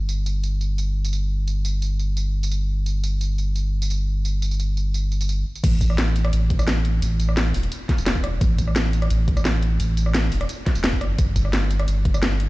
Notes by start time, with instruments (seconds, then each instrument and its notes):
Already playing: sub bass G1
0.09 tambourine
0.26 tambourine
0.44 tambourine
0.61 tambourine
0.78 tambourine
1.05 tambourine
1.13 tambourine
1.48 tambourine
1.65 tambourine
1.82 tambourine
1.99 tambourine
2.17 tambourine
2.43 tambourine
2.52 tambourine
2.86 tambourine
3.04 tambourine
3.21 tambourine
3.38 tambourine
3.56 tambourine
3.82 tambourine
3.90 tambourine
4.25 tambourine
4.42 tambourine
4.51 tambourine
4.60 tambourine
4.77 tambourine
4.94 tambourine
5.12 tambourine
5.21 tambourine
5.29 tambourine
5.55 tambourine
5.64 sub bass A1, kick, closed hi-hat, crash, tambourine
5.81 kick, closed hi-hat, tambourine
5.90 cross-stick
5.98 snare, closed hi-hat, tambourine
6.16 closed hi-hat, tambourine
6.25 cross-stick, closed hi-hat
6.33 sub bass A1, closed hi-hat, tambourine
6.50 kick, closed hi-hat
6.59 sub bass A1, cross-stick, tambourine
6.68 snare, closed hi-hat, tambourine
6.85 closed hi-hat
7.02 sub bass A1, closed hi-hat, tambourine
7.20 closed hi-hat, tambourine
7.29 cross-stick
7.37 snare, closed hi-hat, tambourine
7.54 sub bass E1, open hi-hat, tambourine
7.63 closed hi-hat
7.72 closed hi-hat, tambourine
7.89 kick, snare, closed hi-hat
7.98 sub bass E1, tambourine
8.06 snare, closed hi-hat, tambourine
8.15 kick
8.24 cross-stick, closed hi-hat
8.41 sub bass A1, kick, closed hi-hat, tambourine
8.58 kick, closed hi-hat, tambourine
8.68 cross-stick
8.76 snare, closed hi-hat, tambourine
8.93 closed hi-hat, tambourine
9.02 cross-stick, closed hi-hat
9.10 sub bass A1, closed hi-hat, tambourine
9.28 kick, closed hi-hat
9.37 sub bass A1, cross-stick, tambourine
9.45 snare, closed hi-hat, tambourine
9.62 closed hi-hat
9.80 sub bass A1, closed hi-hat, tambourine
9.97 closed hi-hat, tambourine
10.06 cross-stick
10.15 snare, closed hi-hat, tambourine
10.32 sub bass E1, open hi-hat, tambourine
10.41 cross-stick, closed hi-hat
10.49 closed hi-hat, tambourine
10.66 kick, snare, closed hi-hat
10.75 sub bass E1, closed hi-hat, tambourine
10.84 snare, closed hi-hat, tambourine
10.93 kick
11.01 sub bass G1, cross-stick, closed hi-hat
11.18 sub bass G1, kick, closed hi-hat, tambourine
11.36 kick, closed hi-hat, tambourine
11.45 cross-stick
11.53 snare, closed hi-hat, tambourine
11.71 closed hi-hat, tambourine
11.80 cross-stick, closed hi-hat
11.88 sub bass G1, closed hi-hat, tambourine
12.05 kick, closed hi-hat
12.14 sub bass G1, cross-stick, tambourine
12.23 snare, closed hi-hat, tambourine
12.40 closed hi-hat